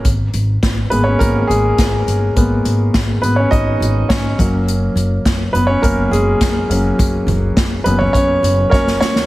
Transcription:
<<
  \new Staff \with { instrumentName = "Grand piano" } { \time 4/4 \key fis \mixolydian \tempo 4 = 104 r4. b'16 <cis' cis''>16 <ais ais'>8 <gis gis'>4 r8 | r4. <b b'>16 <cis' cis''>16 <dis' dis''>4 <cis' cis''>8. r16 | r4. <b b'>16 <cis' cis''>16 ais'8 <gis gis'>4 r8 | r4. <b b'>16 <cis' cis''>16 <cis' cis''>4 <ais cis' ais' cis''>8 <cis' cis''>8 | }
  \new Staff \with { instrumentName = "Grand piano" } { \time 4/4 \key fis \mixolydian r4. <gis ais b>8 r2 | <gis ais b>4. r2 <fis ais cis'>8~ | <fis ais cis'>4 r4 <fis ais cis'>8 r4 <fis ais cis'>8~ | <fis ais cis'>4 r8 <fis ais cis'>8 r2 | }
  \new Staff \with { instrumentName = "Upright bass" } { \clef bass \time 4/4 \key fis \mixolydian gis,,8 gis,,8 gis,,8 gis,,8 gis,,8 gis,,8 gis,,8 g,,8 | gis,,8 gis,,8 gis,,8 gis,,8 gis,,8 gis,,8 gis,,8 fis,,8~ | fis,,8 fis,,8 fis,,8 fis,,8 fis,,8 fis,,8 fis,,8 eis,,8 | fis,,8 fis,,8 fis,,8 fis,,8 fis,,8 fis,,8 fis,,8 d,8 | }
  \new DrumStaff \with { instrumentName = "Drums" } \drummode { \time 4/4 <hh bd>8 hh8 <hh bd sn>8 hh8 <hh bd>8 hh8 <hh bd sn>8 hh8 | <hh bd>8 hh8 <hh bd sn>8 hh8 <hh bd>8 hh8 <hh bd sn>8 <hh bd>8 | hh8 hh8 <hh bd sn>8 hh8 <hh bd>8 hh8 <hh bd sn>8 hh8 | <hh bd>8 <hh tomfh>8 <hh bd sn>8 hh16 tomfh16 <hh bd>8 hh8 <bd sn>16 sn16 sn16 sn16 | }
>>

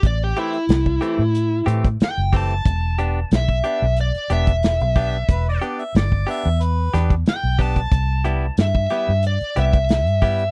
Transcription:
<<
  \new Staff \with { instrumentName = "Lead electric guitar" } { \time 4/4 \key e \minor \tempo 4 = 91 d''16 g'16 e'2 r8 g''8 a''8~ | a''4 e''4 d''8 e''4.~ | e''8 r2 r8 g''8 a''8~ | a''4 e''4 d''8 e''4. | }
  \new Staff \with { instrumentName = "Harmonica" } { \time 4/4 \key e \minor r1 | r1 | b'16 d''8 e''16 d''8 e''8 b'8. r4 r16 | r1 | }
  \new Staff \with { instrumentName = "Clean electric guitar" } { \time 4/4 \key e \minor r8 <e a c' g'>8 r8 <e a c' g'>8 r8 <e a c' g'>8 r8 <e a c' g'>8 | r8 <b d' g'>8 r8 <b d' g'>8 r8 <b d' g'>8 r8 <b d' g'>8 | r8 <b d' g'>8 r8 <b d' g'>8 r8 <b d' g'>8 r8 <b d' g'>8 | r8 <g b e' g'>8 r8 <g b e' g'>8 r8 <g b e' g'>8 r8 <g b e' g'>8 | }
  \new Staff \with { instrumentName = "Fingered electric bass" } { \clef bass \time 4/4 \key e \minor a,,8 r8 c,8 r16 a,8. a,8 r16 fis,,8. | e,,4 b,,8 r16 b,,8 r16 e,,8. b,,8. | e,,8 r8 g,,8 r16 e,8. e,8 r16 b,,8. | c,4 g,8 r16 g,8 r16 c,8. g,8. | }
  \new DrumStaff \with { instrumentName = "Drums" } \drummode { \time 4/4 <hh bd>8 hh16 hh16 <hh sn>16 bd16 hh8 hh8 hh16 <hh bd>16 <hh sn>8 <hho bd>16 hh16 | <hh bd>8 hh8 <hh sn>16 bd16 hh8 hh16 hh16 hh16 <hh bd>16 <hh sn>16 hh16 <hho bd>16 hh16 | <hh bd>8 hh16 hh16 <hh sn>16 bd16 hho8 hh8 <hh sn>16 <hh bd>16 <hh sn>8 <hho bd>16 <hh bd>16 | <hh bd>8 hh8 <hh sn>16 bd16 <hh sn>8 hh16 hh16 hh16 <hh bd>16 <hh sn>16 hh16 <hho bd>16 hh16 | }
>>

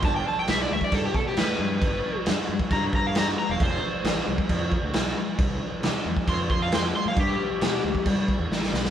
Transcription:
<<
  \new Staff \with { instrumentName = "Electric slide guitar" } { \time 4/4 \key g \mixolydian \tempo 4 = 134 a''16 g''16 a''16 g''16 e''16 d''16 e''16 d''16 a'16 g'16 a'16 g'16 b'4~ | b'4 r4 bes''16 r16 bes''16 f''16 bes''16 r16 bes''16 f''16 | c''2 r2 | r2 c'''16 r16 c'''16 f''16 c'''16 r16 c'''16 f''16 |
g'2 r2 | }
  \new Staff \with { instrumentName = "Fingered electric bass" } { \clef bass \time 4/4 \key g \mixolydian g,,8 r8 b,,8 d,16 r16 g,8 b,8 a,8 g,8 | g,,8 r8 g,16 r16 g,16 r16 g,4.~ g,16 e,,16 | f,,8 r8 a,,8 c,16 r16 f,8. d,16 b,,8 r8 | c,8 r8 c16 r16 e,16 r16 f,4.~ f,16 a,16 |
g,8 r8 b,8 d,16 r16 g8. e,16 a,,8 b,,8 | }
  \new DrumStaff \with { instrumentName = "Drums" } \drummode { \time 4/4 <cymc bd>4 <cymc sn>8. bd16 <cymc bd>8 bd8 <cymc sn>4 | <cymc bd>4 <cymc sn>8. bd16 <cymc bd>8 bd8 <cymc sn>4 | <cymc bd>4 <cymc sn>8. bd16 <cymc bd>8 bd8 <cymc sn>4 | <cymc bd>4 <cymc sn>8. bd16 <cymc bd>8 bd8 <cymc sn>4 |
<cymc bd>4 <cymc sn>8. bd16 <cymc bd>8 bd8 sn16 sn16 sn16 sn16 | }
>>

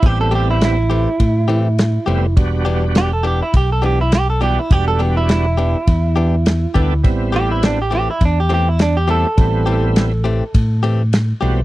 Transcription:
<<
  \new Staff \with { instrumentName = "Clean electric guitar" } { \time 4/4 \key a \dorian \tempo 4 = 103 g'16 a'16 g'16 e'16 e'2. | r4 g'16 a'16 g'16 e'16 g'16 a'16 g'16 e'16 g'16 a'16 g'16 e'16 | g'16 a'16 g'16 e'16 e'2. | r8 g'16 e'16 d'16 g'16 g'16 e'16 d'16 g'16 g'16 e'16 d'16 g'16 a'8~ |
a'2~ a'8 r4. | }
  \new Staff \with { instrumentName = "Clean electric guitar" } { \time 4/4 \key a \dorian r8 <e a c' g'>8 r8 <e a c' g'>8 r8 <e a c' g'>8 r8 <e a c' g'>8 | r8 <e b d' g'>8 r8 <e b d' g'>8 r8 <e b d' g'>8 r8 <e b d' g'>8 | r8 <e b d' g'>8 r8 <e b d' g'>8 r8 <e b d' g'>8 r8 <e b d' g'>8 | r8 <e a c' g'>8 r8 <e a c' g'>8 r8 <e a c' g'>8 r8 <e a c' g'>8 |
r8 <e a c' g'>8 r8 <e a c' g'>8 r8 <e a c' g'>8 r8 <e a c' g'>8 | }
  \new Staff \with { instrumentName = "Tonewheel organ" } { \time 4/4 \key a \dorian <g b c' e'>4. r2 <g b c' e'>8 | <g b d' fis'>4. r2 <g b d' fis'>8 | <g b d' fis'>4. r2 <g b d' a'>8 | <g b c' e'>4. r2 <g b c' e'>8 |
<g b c' e'>4. r2 <g b c' fis'>8 | }
  \new Staff \with { instrumentName = "Fingered electric bass" } { \clef bass \time 4/4 \key a \dorian a,,2 a,4. f,,8 | e,,2 b,,2 | e,,2 e,4. d,8 | a,,2 e,2 |
a,,2 a,4. b,,8 | }
  \new DrumStaff \with { instrumentName = "Drums" } \drummode { \time 4/4 <bd cymr>8 cymr8 <cymr sn>8 cymr8 <bd cymr>8 cymr8 <cymr sn>8 cymr8 | <bd cymr>8 cymr8 <cymr sn>8 cymr8 <bd cymr>8 cymr8 <cymr sn>8 cymr8 | <bd cymr>8 cymr8 <cymr sn>8 cymr8 <bd cymr>8 cymr8 <cymr sn>8 <bd cymr>8 | <bd cymr>8 cymr8 <cymr sn>8 cymr8 <bd cymr>8 cymr8 <cymr sn>8 cymr8 |
<bd cymr>8 cymr8 <cymr sn>8 cymr8 <bd cymr>8 cymr8 <cymr sn>8 cymr8 | }
>>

